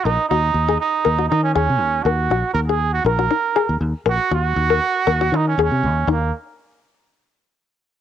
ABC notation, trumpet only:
X:1
M:4/4
L:1/16
Q:1/4=120
K:Ebdor
V:1 name="Trumpet"
E2 E4 E4 E D D4 | G4 B A2 G B6 z2 | G2 G8 E D D4 | B,2 z12 z2 |]